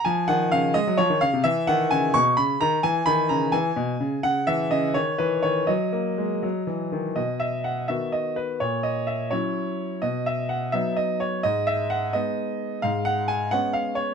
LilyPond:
<<
  \new Staff \with { instrumentName = "Grand piano" } { \time 6/8 \key des \major \tempo 4. = 85 aes''8 ges''8 f''8 ees''8 des''8 f''8 | \key b \major e''8 fis''8 gis''8 cis'''8 b''8 ais''8 | gis''8 b''8 ais''8 gis''4. | fis''8 e''8 dis''8 cis''8 b'8 cis''8 |
dis''2~ dis''8 r8 | dis''8 e''8 fis''8 e''8 dis''8 b'8 | cis''8 dis''8 e''8 cis''4. | dis''8 e''8 fis''8 e''8 dis''8 cis''8 |
dis''8 e''8 fis''8 dis''4. | \key cis \mixolydian eis''8 fis''8 gis''8 fis''8 eis''8 cis''8 | }
  \new Staff \with { instrumentName = "Grand piano" } { \clef bass \time 6/8 \key des \major f8 ees8 des8 aes16 ges16 f16 ees16 des16 c16 | \key b \major e8 dis8 cis8 b,8 cis8 dis8 | e8 dis8 cis8 e8 b,8 cis8 | cis8 e8 cis8 dis8 e8 dis8 |
fis8 ais8 gis8 fis8 e8 dis8 | b,4. <dis b fis'>4. | ais,4. <fis cis' e'>4. | b,4. <fis b dis'>4. |
gis,4. <gis b dis'>4. | \key cis \mixolydian gis,4. <gis b cis'>4. | }
>>